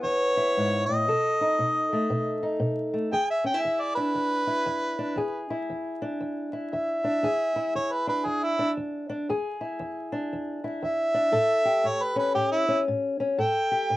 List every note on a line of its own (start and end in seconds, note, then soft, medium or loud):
0.00 0.51 E2 medium
0.00 1.12 B3 medium
0.00 0.36 E4 medium
0.00 1.05 G#4 medium
0.00 0.83 C#5 loud
0.37 1.05 E4 medium
0.57 0.88 G#2 medium
0.86 1.08 A2 medium
0.86 2.57 D#5 loud
1.08 1.55 B2 medium
1.08 3.11 A4 medium
1.41 2.42 D#4 medium
1.59 2.06 B2 medium
1.93 2.92 A3 medium
2.10 2.58 B2 medium
2.43 3.11 D#4 medium
2.60 3.08 B2 medium
2.94 3.13 A3 soft
3.12 3.60 E2 medium
3.12 5.17 G#4 medium
3.12 3.29 G5 loud
3.31 3.46 E5 medium
3.44 3.54 C#4 medium
3.44 3.64 G5 medium
3.54 4.46 E4 soft
3.62 4.12 E2 medium
3.62 3.82 E5 medium
3.81 3.95 D5 medium
3.95 4.98 D4 medium
3.95 5.47 B4 loud
4.15 4.62 E2 medium
4.47 5.50 E4 medium
4.66 5.14 E2 medium
4.99 5.19 D4 medium
5.16 5.65 E2 medium
5.16 7.24 G#4 medium
5.50 6.53 E4 medium
5.70 6.17 E2 medium
6.02 7.04 D4 medium
6.21 6.68 E2 medium
6.53 7.55 E4 medium
6.73 7.20 E2 medium
6.73 7.72 E5 medium
7.04 7.26 D4 medium
7.23 7.71 E2 medium
7.23 9.27 G#4 medium
7.56 9.60 E4 medium
7.75 8.22 E2 medium
7.75 7.93 C#5 medium
7.92 8.08 B4 medium
8.07 8.58 D4 medium
8.07 8.27 B4 medium
8.25 8.73 E2 medium
8.25 8.45 G#4 medium
8.44 8.70 E4 medium
8.59 9.08 D4 medium
8.77 9.25 E2 medium
9.10 9.27 D4 medium
9.29 9.76 E2 medium
9.29 11.32 G#4 medium
9.61 10.64 E4 medium
9.80 10.27 E2 medium
10.12 11.13 D4 medium
10.33 10.79 E2 medium
10.64 11.65 E4 medium
10.82 11.30 E2 medium
10.82 11.89 E5 loud
11.14 11.31 D4 medium
11.32 11.80 A2 medium
11.32 13.35 A4 medium
11.65 13.36 G4 medium
11.84 12.32 A2 medium
11.84 12.04 C#5 medium
12.03 12.18 B4 medium
12.16 12.67 C#4 medium
12.16 12.35 B4 medium
12.35 12.83 A2 medium
12.35 12.51 G4 loud
12.52 12.79 E4 medium
12.68 13.19 C#4 medium
12.88 13.35 A2 medium
13.20 13.37 C#4 medium
13.38 13.86 A2 medium
13.38 13.97 A4 medium
13.38 13.97 G5 medium
13.71 13.97 G4 medium
13.90 13.97 A2 medium